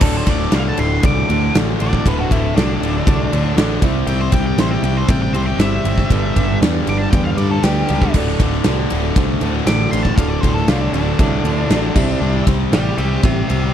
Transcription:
0.01 D1 D2 A2 D3 D4 F#4 A4 D5, kick, crash
0.17 C5
0.26 D1 D2 A2 D3 D5, kick, ride
0.40 snare
0.51 C2 D2 A2 D3 D4 F#4 A4 D5, snare, ride
0.56 F5
0.69 A5
0.77 D1 D2 A2 D3 C6, ride
1.03 C2 D2 A2 D3 D4 F#4 A4 D5 D6, kick, ride
1.29 D2 A2 D3, ride
1.54 A1 D2 A2 D3 D4 F#4 A4 D5, snare, ride
1.80 A1 D2 A2 D3 D5, ride
1.93 kick
2.06 D1 D2 A2 D3 D4 F#4 A4 B4, kick, ride
2.18 F#4
2.31 D1 D2 A2 D3 E4, kick, ride
2.55 C2 D2 A2 D3 D4 F#4 A4 D5, snare, ride
2.80 D1 D2 A2 D3, ride
3.06 C2 D2 A2 D3 D4 F#4 A4 D5, kick, ride
3.32 D2 A2 D3, ride
3.55 A1 D2 D4 F#4 A4 D5, snare, ride
3.59 D2 A2 D3
3.82 C2 C3 G3 C4 E4 G4 C5 E5, kick, ride
4.07 C2 C3 G3 C4 G5, ride
4.21 C5
4.32 C2 C3 G3 C4 G5, kick, ride
4.47 G5
4.57 A1 C3 G3 C4 E4 G4 C5 E5, snare, ride
4.71 G5
4.83 C2 C3 G3 C4 G5, ride
4.97 C5
5.08 A1 C3 G3 C4 E4 G4 C5 E5 G5, kick, ride
5.22 G5
5.32 C2 C3 G3 C4 C5, ride
5.46 G5
5.57 G1 C3 G3 C4 E4 G4 C5 E5, snare, ride
5.85 G1 C3 G3 C4, ride
5.98 kick, snare
6.10 G1 G2 D3 G3 D4 G4 B4 D5, kick, ride
6.36 G1 G2 D3 G3, kick, ride
6.61 E2 G2 D3 G3 D4 G4 B4 D5, snare, ride
6.87 G1 G2 D3 G3 D6, ride
6.98 A5
7.11 E2 G2 D3 G3 D4 G4 B4 D5 G5, kick, ride
7.24 F5
7.37 G2 D3 G3 D5, ride
7.51 A4
7.63 D2 G2 D3 G3 D4 G4 B4 D5, snare, ride
7.88 C#2 G2 D3 G3, ride
8.02 kick, snare
8.14 D1 D2 A2 D3 D4 F#4 A4 D5, kick, crash
8.40 D1 D2 A2 D3, kick, ride
8.52 snare
8.64 C2 D2 A2 D3 D4 F#4 A4, snare, ride
8.68 D5
8.90 D1 D2 A2 D3, ride
9.16 C2 D2 A2 D3 D4 F#4 A4 C5, kick, ride
9.40 D2 A2 D3, ride
9.44 D3
9.66 A1 D2 A2 D3 D4 F#4 A4 D5 D6, snare, ride
9.91 A1 D2 A2 D3 C6, ride
10.03 A5, kick
10.15 D1 D2 F5, kick, ride
10.19 A2 D3 D4 F#4 A4 D5
10.28 D5
10.41 D1 D2 C5, kick, ride
10.46 A2 D3
10.54 A4, snare
10.68 C2 D2 A2 D3 D4 F4 F#4 A4 D5, snare, ride
10.81 D4
10.93 D1 D2 A2 D3 D4, ride
11.19 C2 D2 A2 D3 D4 F#4 A4 E5, kick, ride
11.44 D2 A2 D3, ride
11.68 A1 D2 D4 F#4 A4 D5, snare, ride
11.72 D2 A2 D3
11.95 C2 C3 G3 C4 E4 G4 C5 E5, kick, crash
12.21 C2 C3 G3 C4
12.47 C2 C3 G3 C4, kick, ride
12.71 A1 C3 G3 C4 E4 G4 C5 D5 B5, snare, ride
12.97 C2 C3 G3 C4 D5 B5, ride
13.23 A1 C3 G3 C4 E4 G4 C5 E5 C6, kick, ride
13.48 C2 C3 G3 C4 E5 C6, ride

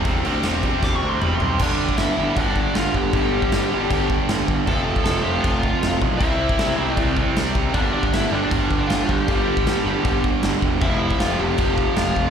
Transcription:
0.05 E1 C3 G3 C4, kick, crash
0.25 D2 C3 G3 C4, crash
0.43 E1 C3 G3 C4, snare, crash
0.63 E1 C3 G3 C4, kick, crash
0.82 E1 C3 G3 C4 D6, kick, snare
0.96 C#6
1.02 D2 C3 G3 C4
1.09 C6
1.21 E1 C3 G3 C4 B5, mid tom
1.36 C6, floor tom
1.41 B1 C3 G3 C4
1.59 G1 G2 D3 G3 D4 D5, kick, crash
1.89 kick
1.97 G1 E4 E5, snare, crash
2.17 G1 G2 D3 G3
2.36 G1 D4 D5, kick, crash
2.56 kick
2.75 G1 F4 F5, snare, crash
2.94 G1 G4 G5, kick
3.13 G1 G2 D3 G3, kick, crash
3.42 kick
3.52 G1, snare, crash
3.71 G1 G2 D3 G3
3.90 G1, kick, crash
4.10 kick
4.29 G1, snare, crash
4.48 G1, kick
4.67 F1 F2 C3 F3 A4 A5, kick, crash
4.96 kick
5.04 F1 A4 A5, snare, crash
5.22 F1 C3 F3 G4 G5
5.28 F2
5.40 F1 F4 F5, kick, crash
5.63 kick
5.83 F1, snare, crash
6.02 B1, kick
6.18 C2 C3 G3 E5, kick, crash
6.22 C4 E4
6.49 kick
6.59 C2, snare, crash
6.77 C2 C3 G3 C4
6.96 C2 D5, kick, crash
7.17 kick
7.36 C2, snare, crash
7.55 C2, kick
7.72 G1 G2 D3 G3 D4 D5, kick, crash
7.93 D4 D5
8.03 kick
8.13 G1 E4 E5, snare, crash
8.30 G1 G2 D3 G3 D5
8.35 D4
8.51 G1, kick, crash
8.71 kick
8.87 G1 F4 F5, snare, crash
9.07 G1 G4 G5, kick
9.27 G1 G2 D3 G3, kick, crash
9.57 kick
9.66 G1, snare, crash
9.85 G1 G2 D3 G3
10.05 G1, kick, crash
10.24 kick
10.43 G1, snare, crash
10.62 E1, kick
10.81 F1 F2 C3 E4 E5, kick, crash
10.86 F3
11.10 kick
11.20 F1 F4 F5, snare, crash
11.39 F1 C3 F3 G4 G5
11.43 F2
11.58 F1, kick, crash
11.78 kick
11.96 F1 F4 F5, snare, crash
12.16 F1, kick

